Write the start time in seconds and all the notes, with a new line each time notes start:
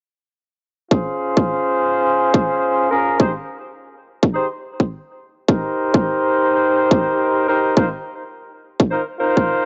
0.91 C#4 F4 G#4 C5, kick
1.37 kick
2.34 kick
2.91 C#4 F4 G#4 A#4
3.20 D#4 G4 G#4 C5, kick
4.23 kick
4.34 D#4 G4 G#4 C5
4.80 kick
5.48 D#4 G4 A#4 C5, kick
5.94 kick
6.91 kick
7.48 D#4 G4 A#4 C5
7.77 D#4 F4 A#4 C5, kick
8.80 kick
8.91 D#4 F4 A#4 C5
9.20 D#4 F4 A#4 C5
9.37 kick